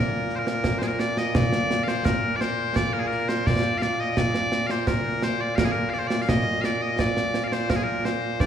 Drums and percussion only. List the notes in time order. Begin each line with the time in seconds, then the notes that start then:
0.29 snare
0.47 snare
0.64 concert bass drum, snare
0.82 snare
1.00 snare
1.17 snare
1.35 concert bass drum, snare
1.53 snare
1.71 snare
1.88 snare
2.05 concert bass drum, snare
2.41 snare
2.76 concert bass drum, snare
3.11 snare
3.29 snare
3.47 concert bass drum, snare
3.82 snare
4.17 concert bass drum, snare
4.34 snare
4.52 snare
4.70 snare
4.87 concert bass drum, snare
5.22 snare
5.58 concert bass drum, snare
5.93 snare
6.10 snare
6.29 concert bass drum, snare
6.64 snare
6.99 concert bass drum, snare
7.17 snare
7.34 snare
7.52 snare
7.70 concert bass drum, snare
8.05 snare
8.40 concert bass drum, snare